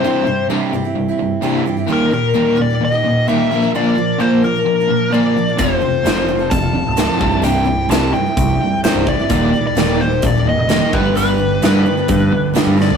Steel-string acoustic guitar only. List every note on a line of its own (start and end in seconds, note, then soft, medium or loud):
0.04 0.27 C3 medium
0.04 0.25 G3 medium
0.04 0.26 C4 medium
0.04 0.26 E4 medium
0.04 0.27 G4 medium
0.26 0.49 G3 medium
0.26 0.49 C4 medium
0.26 0.49 E4 medium
0.26 0.50 G4 medium
0.50 0.73 C3 medium
0.50 0.72 G3 medium
0.50 0.73 C4 medium
0.50 0.73 E4 medium
0.50 0.74 G4 medium
0.73 0.85 G3 medium
0.73 0.85 C4 medium
0.73 0.84 E4 medium
0.73 0.83 G4 medium
0.84 1.09 C4 soft
0.84 1.08 E4 soft
0.84 1.07 G4 medium
1.08 1.42 C4 soft
1.08 1.42 E4 medium
1.08 1.43 G4 medium
1.42 1.65 C3 medium
1.42 1.65 G3 medium
1.42 1.66 C4 medium
1.42 1.66 E4 medium
1.42 1.66 G4 medium
1.66 1.77 G3 medium
1.66 1.78 C4 medium
1.66 1.77 E4 medium
1.66 1.76 G4 medium
1.77 1.89 C4 soft
1.77 1.89 E4 soft
1.77 1.89 G4 medium
1.88 2.11 D#3 medium
1.88 2.10 G3 medium
1.88 2.11 A#3 medium
1.88 2.12 D#4 medium
1.88 2.13 G4 medium
2.11 2.33 G3 medium
2.11 2.34 A#3 medium
2.11 2.34 D#4 medium
2.11 2.34 G4 medium
2.34 2.57 D#3 medium
2.34 2.54 G3 medium
2.34 2.56 A#3 medium
2.34 2.56 D#4 medium
2.34 2.57 G4 medium
2.56 2.68 G3 medium
2.56 2.69 A#3 medium
2.56 2.69 D#4 medium
2.56 2.69 G4 medium
2.70 2.93 A#3 soft
2.70 2.92 D#4 soft
2.70 2.91 G4 soft
2.92 3.28 A#3 soft
2.92 3.28 D#4 soft
2.92 3.27 G4 soft
3.28 3.51 D#3 medium
3.28 3.51 G3 medium
3.28 3.51 A#3 medium
3.28 3.52 D#4 medium
3.28 3.51 G4 medium
3.52 3.63 F3 medium
3.52 3.63 A#3 medium
3.52 3.62 D4 medium
3.52 3.61 A#4 medium
3.62 3.74 F3 soft
3.62 3.75 A#3 soft
3.62 3.74 D4 soft
3.62 3.74 A#4 medium
3.75 3.97 A#2 medium
3.75 3.97 D3 medium
3.75 3.94 F3 medium
3.75 3.96 A#3 medium
3.75 3.97 D4 medium
3.75 3.97 A#4 medium
3.96 4.19 F3 medium
3.96 4.19 A#3 medium
3.96 4.20 D4 medium
3.96 4.20 A#4 medium
4.20 4.43 A#2 medium
4.20 4.43 D3 medium
4.20 4.42 F3 medium
4.20 4.43 A#3 medium
4.20 4.44 D4 medium
4.20 4.44 A#4 medium
4.43 4.55 F3 medium
4.43 4.55 A#3 medium
4.43 4.55 D4 medium
4.43 4.54 A#4 medium
4.56 4.79 F3 soft
4.56 4.79 A#3 soft
4.56 4.78 D4 soft
4.56 4.78 A#4 soft
4.80 5.13 F3 soft
4.80 5.13 A#3 soft
4.80 5.13 D4 soft
4.80 5.13 A#4 medium
5.12 5.36 A#2 medium
5.12 5.36 D3 medium
5.12 5.35 F3 medium
5.12 5.36 A#3 medium
5.12 5.37 D4 medium
5.12 5.37 A#4 medium
5.36 5.48 F3 soft
5.36 5.48 A#3 soft
5.36 5.48 D4 soft
5.36 5.47 A#4 medium
5.48 5.57 F3 soft
5.48 5.59 A#3 soft
5.48 5.60 D4 soft
5.48 5.59 A#4 soft
5.58 5.79 F3 medium
5.58 5.80 C4 medium
5.58 5.81 F4 medium
5.58 5.81 A4 medium
5.80 6.03 F3 medium
5.80 6.04 C4 medium
5.80 6.04 F4 medium
5.80 6.05 A4 medium
6.04 6.27 F3 medium
6.04 6.27 C4 medium
6.04 6.28 F4 medium
6.04 6.29 A4 medium
6.28 6.40 F3 medium
6.28 6.40 C4 medium
6.28 6.40 F4 medium
6.28 6.38 A4 medium
6.39 6.62 C4 soft
6.39 6.61 F4 soft
6.39 6.60 A4 medium
6.61 6.96 C4 soft
6.61 6.97 F4 soft
6.61 6.97 A4 medium
6.97 7.19 F3 medium
6.97 7.19 C4 medium
6.97 7.21 F4 medium
6.97 7.21 A4 medium
7.19 7.32 G3 medium
7.19 7.32 C4 medium
7.19 7.31 E4 medium
7.19 7.30 G4 medium
7.31 7.42 C4 soft
7.31 7.42 E4 medium
7.31 7.42 G4 soft
7.42 7.66 C3 medium
7.42 7.63 G3 medium
7.42 7.64 C4 medium
7.42 7.66 E4 medium
7.42 7.66 G4 medium
7.65 7.88 G3 soft
7.65 7.88 C4 medium
7.65 7.89 E4 medium
7.65 7.89 G4 medium
7.89 8.13 C3 medium
7.89 8.12 G3 medium
7.89 8.13 C4 medium
7.89 8.14 E4 medium
7.89 8.14 G4 medium
8.14 8.25 G3 medium
8.14 8.26 C4 medium
8.14 8.26 E4 medium
8.14 8.25 G4 medium
8.26 8.49 C4 soft
8.26 8.48 E4 soft
8.26 8.48 G4 soft
8.49 8.84 C4 soft
8.49 8.84 E4 soft
8.49 8.84 G4 soft
8.84 9.07 C3 medium
8.84 9.05 G3 medium
8.84 9.06 C4 medium
8.84 9.07 E4 medium
8.84 9.07 G4 medium
9.06 9.18 G3 medium
9.06 9.19 C4 medium
9.06 9.19 E4 medium
9.06 9.18 G4 medium
9.19 9.31 C4 soft
9.19 9.31 E4 soft
9.19 9.31 G4 medium
9.30 9.54 D#3 medium
9.30 9.53 G3 medium
9.30 9.54 A#3 medium
9.30 9.54 D#4 medium
9.30 9.54 G4 medium
9.54 9.75 G3 medium
9.54 9.75 A#3 medium
9.54 9.75 D#4 medium
9.54 9.76 G4 medium
9.75 9.99 D#3 medium
9.75 9.99 G3 medium
9.75 10.00 A#3 medium
9.75 10.00 D#4 medium
9.75 10.00 G4 medium
10.00 10.12 G3 medium
10.00 10.12 A#3 medium
10.00 10.11 D#4 medium
10.00 10.10 G4 medium
10.12 10.36 A#3 soft
10.12 10.35 D#4 soft
10.12 10.35 G4 soft
10.36 10.70 A#3 soft
10.36 10.70 D#4 soft
10.36 10.70 G4 medium
10.71 10.94 D#3 medium
10.71 10.93 G3 medium
10.71 10.94 A#3 medium
10.71 10.94 D#4 medium
10.71 10.94 G4 medium
10.94 11.05 G3 medium
10.94 11.05 B3 medium
10.94 11.05 D4 medium
10.94 11.04 G4 medium
11.05 11.15 G3 soft
11.05 11.15 B3 soft
11.05 11.16 D4 soft
11.05 11.16 G4 soft
11.15 11.39 G2 medium
11.15 11.39 D3 medium
11.15 11.37 G3 medium
11.15 11.37 B3 medium
11.15 11.38 D4 medium
11.15 11.38 G4 medium
11.38 11.61 G3 soft
11.38 11.61 B3 medium
11.38 11.62 D4 medium
11.38 11.62 G4 medium
11.62 11.86 G2 medium
11.62 11.86 D3 medium
11.62 11.84 G3 medium
11.62 11.85 B3 medium
11.62 11.85 D4 medium
11.62 11.86 G4 medium
11.86 11.98 G3 medium
11.86 11.97 B3 medium
11.86 11.96 D4 medium
11.86 11.96 G4 medium
11.97 12.19 G3 soft
11.97 12.19 B3 soft
11.97 12.19 D4 soft
11.97 12.18 G4 medium
12.19 12.54 G3 soft
12.19 12.54 B3 soft
12.19 12.55 D4 medium
12.19 12.54 G4 medium
12.54 12.78 G2 medium
12.54 12.79 D3 medium
12.54 12.76 G3 medium
12.54 12.76 B3 medium
12.54 12.78 D4 medium
12.54 12.79 G4 medium
12.77 12.90 G3 medium
12.77 12.89 B3 medium
12.77 12.88 D4 medium
12.77 12.88 G4 medium
12.89 12.97 G3 soft
12.89 12.97 B3 soft
12.89 12.97 D4 soft
12.89 12.97 G4 medium